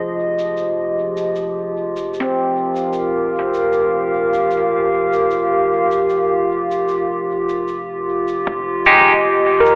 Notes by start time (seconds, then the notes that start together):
Already playing: F1 F3 F4 G4 G#4 D#5
0.39 shaker
0.57 shaker
1.17 shaker
1.36 shaker
1.97 shaker
2.14 shaker
2.20 C4
2.34 F5
2.45 A#4
2.76 shaker
2.93 shaker
3.54 shaker
3.73 shaker
4.34 shaker
4.51 shaker
5.13 shaker
5.31 shaker
5.91 shaker
6.10 shaker
6.71 shaker
6.88 shaker
7.49 shaker
7.68 shaker
8.28 shaker
8.47 F1, kick
8.76 D#5
8.86 G#3 D#4 G4, shaker
9.36 G#4
9.60 A#4
9.66 shaker